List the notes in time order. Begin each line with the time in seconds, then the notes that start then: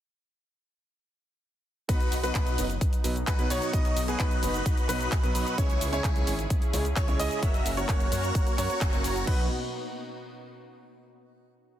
1.88 B1 B2 F#3 B3 D#4 F#4 B4, kick, closed hi-hat, cabasa
2.00 closed hi-hat, cabasa
2.12 B1, open hi-hat, cabasa
2.23 B2 F#3 B3 D#4 F#4 B4, closed hi-hat, cabasa
2.35 B1 D#4 F#4 B4, kick, clap, closed hi-hat, cabasa
2.47 closed hi-hat, cabasa
2.57 F#1 B2 F#3 B3 D#4 B4, open hi-hat, cabasa
2.70 closed hi-hat, cabasa
2.81 B1, kick, closed hi-hat, cabasa
2.93 closed hi-hat, cabasa
3.04 B1 B2 F#3 B3 D#4 B4, open hi-hat, cabasa
3.16 closed hi-hat, cabasa
3.27 B1 D#4 F#4 B4, kick, clap, closed hi-hat, cabasa
3.38 B2 F#3 B3 D#4 B4, closed hi-hat, cabasa
3.50 B1 D#4 F#4 C#5, open hi-hat, cabasa
3.62 closed hi-hat, cabasa
3.73 B1 B2 F#3 B3 D#4 F#4 B4 D#5, kick, closed hi-hat, cabasa
3.85 closed hi-hat, cabasa
3.96 B1, open hi-hat, cabasa
4.08 B2 F#3 B3 D#4 F#4 G#4 B4, closed hi-hat, cabasa
4.20 B1 D#4 F#4 B4, kick, clap, closed hi-hat, cabasa
4.31 closed hi-hat, cabasa
4.42 F#1 B2 F#3 B3 D#4 B4, open hi-hat, cabasa
4.54 closed hi-hat, cabasa
4.66 B1, kick, closed hi-hat, cabasa
4.77 closed hi-hat, cabasa
4.88 B1 B2 F#3 B3 D#4 F#4 B4, clap, open hi-hat, cabasa
5.00 closed hi-hat, cabasa
5.12 B1, kick, clap, closed hi-hat, cabasa
5.23 B2 F#3 B3 D#4 B4, closed hi-hat, cabasa
5.35 B1, open hi-hat, cabasa
5.47 closed hi-hat, cabasa
5.57 C#2 C#3 G#3 C#4 E4 G#4 C#5, kick, closed hi-hat, cabasa
5.70 closed hi-hat, cabasa
5.81 C#2, open hi-hat, cabasa
5.92 C#3 G#3 C#4 E4 G#4 C#5, closed hi-hat, cabasa
6.04 C#2 E4 G#4 C#5, kick, clap, closed hi-hat, cabasa
6.16 closed hi-hat, cabasa
6.27 G#1 C#3 G#3 C#4 E4 C#5, open hi-hat, cabasa
6.39 closed hi-hat, cabasa
6.50 C#2, kick, closed hi-hat, cabasa
6.62 closed hi-hat, cabasa
6.73 C#2 C#3 G#3 C#4 E4 C#5, open hi-hat, cabasa
6.85 closed hi-hat, cabasa
6.96 C#2 E4 G#4 C#5, kick, clap, closed hi-hat, cabasa
7.07 C#3 G#3 C#4 E4 C#5, closed hi-hat, cabasa
7.19 C#2 E4 G#4 D#5, open hi-hat, cabasa
7.31 closed hi-hat, cabasa
7.42 F#1 A#3 C#4 F#4 A#4 C#5 E5, kick, closed hi-hat, cabasa
7.54 closed hi-hat, cabasa
7.66 F#1, open hi-hat, cabasa
7.77 A#3 C#4 F#4 A#4 C#5, closed hi-hat, cabasa
7.89 F#1 F#4 A#4 C#5, kick, clap, closed hi-hat, cabasa
8.00 closed hi-hat, cabasa
8.11 F#2 A#3 C#4 F#4 C#5, open hi-hat, cabasa
8.23 closed hi-hat, cabasa
8.35 F#1, kick, closed hi-hat, cabasa
8.47 closed hi-hat, cabasa
8.58 F#2 A#3 C#4 F#4 A#4 C#5, clap, open hi-hat, cabasa
8.69 A#3 C#4 F#4 C#5, closed hi-hat, cabasa
8.81 F#1, kick, clap, closed hi-hat, cabasa
8.92 A#3 C#4 F#4 C#5, closed hi-hat, cabasa
9.04 F#1, open hi-hat, cabasa
9.16 closed hi-hat, cabasa
9.26 B1 B2 F#3 B3 D#4 F#4 B4, kick, crash